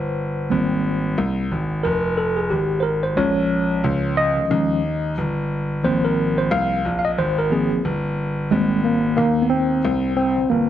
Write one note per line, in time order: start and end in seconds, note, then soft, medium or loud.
0.00 0.48 G1 medium
0.00 1.13 C5 medium
0.50 1.14 G#1 medium
0.50 1.46 G3 medium
0.50 1.46 A#3 soft
0.50 1.47 C4 medium
1.18 1.49 C2 medium
1.52 1.83 G#1 medium
1.83 2.48 F1 loud
1.83 2.18 A#4 medium
2.18 2.38 A4 medium
2.37 2.51 G#4 medium
2.50 3.14 G#1 medium
2.50 2.81 G4 medium
2.80 3.04 A#4 medium
2.80 2.84 C5 medium
3.03 3.17 C5 medium
3.16 3.81 A#1 medium
3.16 4.48 F3 medium
3.16 4.49 G#3 medium
3.16 4.49 C#4 medium
3.16 4.13 C#5 loud
3.84 4.35 C#2 medium
4.17 5.13 D#5 loud
4.37 4.43 D#2 soft
4.49 5.14 D#2 medium
4.49 4.80 F3 medium
4.49 4.80 G#3 soft
4.49 4.81 C#4 medium
5.18 5.81 G1 medium
5.84 6.48 G#1 loud
5.84 6.80 F3 medium
5.84 6.80 A#3 medium
5.84 6.81 C4 medium
5.84 6.05 C5 medium
6.05 6.39 A#4 medium
6.38 6.51 C5 medium
6.51 6.83 C2 loud
6.51 6.98 F5 loud
6.85 7.16 A#1 medium
6.99 7.04 F5 medium
7.05 7.11 D#5 loud
7.18 7.68 G#1 loud
7.18 7.38 C5 loud
7.38 7.52 A#4 medium
7.50 7.80 F3 soft
7.50 7.81 A#3 soft
7.50 7.81 C4 medium
7.50 7.82 G#4 medium
7.72 7.77 G1 soft
7.85 8.48 G1 medium
8.51 9.15 G#1 medium
8.51 8.97 G3 medium
8.51 8.82 G#3 medium
8.51 8.83 A#3 medium
8.51 8.98 C4 medium
8.84 9.15 A#3 medium
9.17 9.81 D#2 medium
9.17 9.46 A#3 medium
9.42 9.49 B3 medium
9.50 10.13 C4 loud
9.85 10.35 C2 medium
10.16 10.48 C4 loud
10.37 10.43 G1 soft
10.50 10.69 G1 medium
10.50 10.69 A#3 medium